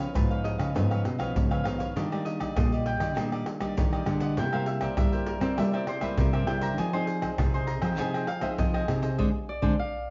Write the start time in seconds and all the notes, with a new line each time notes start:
Already playing: C#3 F3 B3 D#4 B4 C#5
0.00 B4 C#5 F5
0.14 G#2 F3 B3 D#4 F4 B4 C#5 F5, pandeiro, tamborim, shaker, surdo
0.30 B4 C#5 F5, pandeiro, shaker
0.44 D#5, pandeiro
0.58 C#3 B4 C#5 F5, pandeiro, tamborim, shaker
0.74 G#2 C#3 F3 B3 D#4 F4 B4 C#5 F5, pandeiro, tamborim, shaker, surdo
0.90 B4 C#5 F5, pandeiro, tamborim, shaker
1.04 B2, muted cavaquinho stroke, pandeiro, tamborim
1.18 F3 B3 D#4 B4 C#5 F5, pandeiro, tamborim, shaker, surdo
1.36 G#2 C#3, pandeiro, shaker, surdo
1.51 B4 C#5 F5, pandeiro, tamborim, shaker, surdo
1.64 D#3 F3 B3 D#4 F5, pandeiro, tamborim
1.79 B4 C#5 F5, pandeiro, shaker, surdo
1.96 D#3 G3 A#3 D4 G4 D5 D#5, pandeiro, shaker, surdo
2.12 G3 A#3 D4 G4 D5 D#5, pandeiro, tamborim, shaker
2.25 D#5, muted cavaquinho stroke, pandeiro
2.40 G4 D5 D#5, pandeiro, tamborim, shaker, surdo
2.56 A#2 G3 A#3 D4 G4 D5 D#5, pandeiro, tamborim, shaker, surdo
2.72 G4 D5 D#5, pandeiro, shaker
2.86 G5, pandeiro, shaker
3.00 D#3 G4 D5 D#5, pandeiro, tamborim, shaker
3.16 A#2 D#3 G3 A#3 D4 G4 D5 D#5, pandeiro, tamborim, shaker, surdo
3.32 G4 D5 D#5, pandeiro, tamborim, shaker
3.46 muted cavaquinho stroke, pandeiro, tamborim
3.60 G3 A#3 D4 G4 D5 D#5, pandeiro, tamborim, shaker, surdo
3.77 A#2 D#3, pandeiro, shaker, surdo
3.93 G4 D5 D#5, pandeiro, tamborim, shaker, surdo
4.06 D3 G3 A#3 D4, pandeiro, tamborim
4.20 G4 D5 D#5 F#5, pandeiro, shaker, surdo
4.37 C3 G3 A#3 E4 A#4 C5 E5 G5, pandeiro, shaker, surdo
4.52 G3 A#3 E4 A#4 C5 E5 F5, pandeiro, tamborim, shaker
4.66 E5, muted cavaquinho stroke, pandeiro
4.81 A#4 C5 D5 E5, pandeiro, tamborim, shaker, surdo
4.97 G2 G3 A#3 E4 A#4 C5 E5, pandeiro, tamborim, shaker, surdo
5.12 G4 A#4 C5 E5, pandeiro, shaker
5.26 A#4, pandeiro
5.40 C4 A#4 C5 D5 E5, pandeiro, tamborim, shaker
5.57 C3 G3 A#3 E4 A#4 C5 E5, pandeiro, tamborim, shaker, surdo
5.73 A#4 C5 D5 E5, pandeiro, tamborim, shaker
5.87 C5, muted cavaquinho stroke, pandeiro, tamborim
6.01 G3 A#3 E4 A#4 B4 C5 E5, pandeiro, tamborim, shaker, surdo
6.17 G2 C3 A#4, pandeiro, shaker, surdo
6.33 A#4 C5 D5 E5, pandeiro, tamborim, shaker, surdo
6.47 C3 G3 A#3 E4 G5, pandeiro, tamborim, surdo
6.61 A#4 C5 E5 A#5, pandeiro, shaker, surdo
6.77 F3 C4 D#4 F4 G#4 C5 D#5 G#5, pandeiro, shaker, surdo
6.93 C4 D#4 G#4 C5 D#5, pandeiro, tamborim, shaker
7.07 muted cavaquinho stroke, pandeiro, shaker
7.21 G#4 C5 D#5, pandeiro, tamborim, shaker, surdo
7.38 C3 C4 D#4 F4 G#4 C5 D#5, pandeiro, tamborim, shaker, surdo
7.54 G#4 C5 D#5 C6, pandeiro, shaker
7.67 A#5, pandeiro
7.82 F3 G#4 C5 D#5 G5, pandeiro, tamborim, shaker
7.98 C3 F3 C4 D#4 F4 G#4 C5 D#5 G#5, pandeiro, tamborim, shaker, surdo
8.14 G#4 C5 D#5 G5, pandeiro, tamborim, shaker
8.27 F5, muted cavaquinho stroke, pandeiro, tamborim
8.41 C4 D#4 G#4 C5 D#5 E5, pandeiro, tamborim, shaker, surdo
8.58 C3 F3 D#5, pandeiro, shaker, surdo
8.74 G#4 C5 D#5 G#5, pandeiro, tamborim, shaker, surdo
8.88 C3 C4 D#4 G#4, pandeiro, tamborim
9.02 G#4 C5 D#5, pandeiro, shaker, surdo
9.18 D3 G#3 C4 D4 G#4 C5 D5, surdo
9.49 D5
9.62 D3 G#3 C4 D4 G#4 C5 D5, surdo
9.79 F5